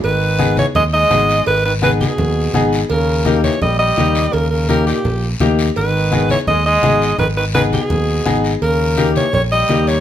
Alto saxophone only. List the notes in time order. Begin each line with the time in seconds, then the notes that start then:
0.05 B4
0.59 C#5
0.76 D#5
0.94 D#5
1.47 B4
1.65 B4
1.84 B4
2.01 G#4
2.90 A#4
3.44 C#5
3.62 D#5
3.79 D#5
4.33 A#4
4.50 A#4
4.69 A#4
4.87 G4
5.77 B4
6.31 C#5
6.48 D#5
6.66 D#5
7.19 B4
7.37 B4
7.55 B4
7.74 G#4
8.62 A#4
9.17 C#5
9.34 C#5
9.52 D#5
9.88 C#5